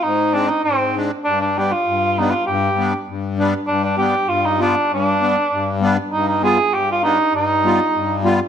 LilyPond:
<<
  \new Staff \with { instrumentName = "Cor anglais" } { \time 2/4 \tempo 4 = 99 ees'8 d'16 ees'16 c'8 r8 | d'16 d'16 g'16 f'8. ees'16 f'16 | g'4 r4 | d'16 d'16 g'8 f'16 ees'16 d'8 |
d'4. r8 | ees'16 ees'16 aes'8 g'16 f'16 ees'8 | ees'4. r8 | }
  \new Staff \with { instrumentName = "Accordion" } { \time 2/4 << { r8 <aes c' d'>16 r8. <aes c' d'>16 r16 | r8 <g b d'>16 r8. <g b d'>16 r16 | r8 <g b d'>16 r8. <g b d'>16 r16 | r8 <g b d'>16 r8. <g b f'>16 r16 |
r8 <g b d'>16 r8. <g b d'>16 r16 | r8 <g b f'>16 r8. <g b d'>16 r16 | r8 <g b f'>16 r8. <g b f'>16 r16 | } \\ { aes,4 aes,4 | g,4 g,4 | g,4 g,4 | g,4 g,4 |
g,4 g,4 | g,4 g,4 | g,4 g,4 | } >> }
>>